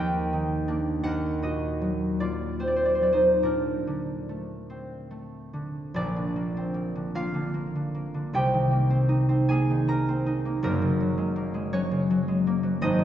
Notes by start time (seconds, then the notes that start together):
Already playing: D#2 A#3 A#4 G5
0.33 D#3
0.68 A#3 D4
1.03 D#2 A#4 F#5
1.42 A#2 F#4 D#5
1.82 F#3
2.20 A#3 F4 D5
2.59 C4 C5
2.67 D5
2.76 C5
2.85 D5
2.95 C5
3.01 F#3 D5
3.13 D#4 C5
3.43 A#2 D4 A#4
3.87 D3
4.29 A3
4.70 C4
5.11 A3
5.53 D3
5.94 A#1 A#2 D4 D5
6.16 D3
6.36 A#3
6.57 C4
6.74 A#3
6.95 D3
7.15 A#3 F4 F5
7.34 D3
7.54 A#3
7.76 D3
7.95 A#3
8.14 D3
8.33 C2 C3 G4 G5
8.54 D#3
8.71 A#3
8.90 C4
9.09 D#4
9.29 C4
9.49 A#3 G#4 G#5
9.70 D#3
9.88 A#3 A#4 A#5
10.09 C4
10.26 D#4
10.45 A#3
10.63 F#1 F#2 A#3 A#4
10.82 C#3
11.00 F#3
11.18 G#3
11.36 A#3
11.54 G#3
11.73 F#3 C#4 C#5
11.91 C#3
12.10 F#3
12.28 G#3
12.47 A#3
12.63 F#3
12.81 G#1 G#2 D#4 D#5
12.99 D#3